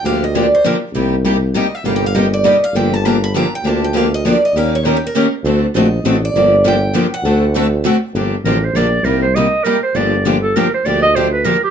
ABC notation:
X:1
M:3/4
L:1/8
Q:"Swing" 1/4=200
K:Gm
V:1 name="Steel-string acoustic guitar"
f e d c B z | z4 e =e | (3f g f e d e f | g a b =b _b g |
a g f e d e | f _d (3B G B- B z | z2 e3 d- | d2 g3 ^f- |
^f2 z4 | z6 | z6 | z6 |
z6 |]
V:2 name="Clarinet"
z6 | z6 | z6 | z6 |
z6 | z6 | z6 | z6 |
z6 | z2 B c d2 | B c e2 B c | d2 z A B c |
d e c =B _B G |]
V:3 name="Steel-string acoustic guitar"
[D,F,B,DG] z [D,F,B,DG] z [D,F,B,DG] z | [C,G,B,EG] z [C,G,B,EG] z [C,G,B,EG] z | [C,G,B,EG] z [C,G,B,EG] z [C,G,B,EG] z | [D,F,B,DG] z [D,F,B,DG] z [D,F,B,DG] z |
[D,F,B,DG] z [D,F,B,DG] z [D,F,B,DG] z | [E,B,_DGB] z [E,B,DGB] z [E,B,DGB] z | [D,A,C^FA] z [D,A,CFA] z [D,A,CFA] z | [D,F,B,DG] z [D,F,B,DG] z [D,F,B,DG] z |
[D,A,C^FA] z [D,A,CFA] z [D,A,CFA] z | [D,F,B,DG] z [D,F,B,DG] z [D,F,B,DG] z | [C,G,B,EG] z [C,G,B,EG] z [C,G,B,EG] z | [D,F,B,DG] z [D,F,B,DG] z [D,F,B,DG] z |
[D,F,B,DG] z [D,F,B,DG] z [D,F,B,DG] z |]
V:4 name="Steel-string acoustic guitar"
[D,F,B,DG] z [D,F,B,DG] z [D,F,B,DG] z | [C,G,B,EG] z [C,G,B,EG] z [C,G,B,EG] z | [C,G,B,EG] z [C,G,B,EG] z [C,G,B,EG] z | [D,F,B,DG] z [D,F,B,DG] z [D,F,B,DG] z |
[D,F,B,DG] z [D,F,B,DG] z [D,F,B,DG] z | [E,B,_DGB] z [E,B,DGB] z [E,B,DGB] z | [D,A,C^FA] z [D,A,CFA] z [D,A,CFA] z | [D,F,B,DG] z [D,F,B,DG] z [D,F,B,DG] z |
[D,A,C^FA] z [D,A,CFA] z [D,A,CFA] z | [D,F,B,DG] z [D,F,B,DG] z [D,F,B,DG] z | [C,G,B,EG] z [C,G,B,EG] z [C,G,B,EG] z | [D,F,B,DG] z [D,F,B,DG] z [D,F,B,DG] z |
[D,F,B,DG] z [D,F,B,DG] z [D,F,B,DG] z |]
V:5 name="Tuba" clef=bass
D,,4 z2 | C,,6 | G,,,6 | G,,,6 |
D,,6 | E,,4 z2 | D,,2 B,,,2 A,,,2 | G,,,6 |
D,,6 | G,,,2 A,,,2 B,,,2 | C,,4 z2 | G,,,6 |
D,,6 |]